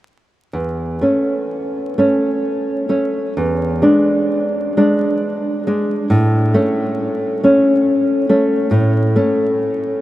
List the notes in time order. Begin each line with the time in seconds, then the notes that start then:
0.53 E2
1.01 A3 C#4
1.98 A3 C#4
2.89 A3 C#4
3.37 E2
3.82 G#3 D4
4.77 G#3 D4
5.67 G#3 D4
6.10 A2
6.54 A3 C#4
7.44 A3 C#4
8.29 A3 C#4
8.71 A2
9.16 A3 C#4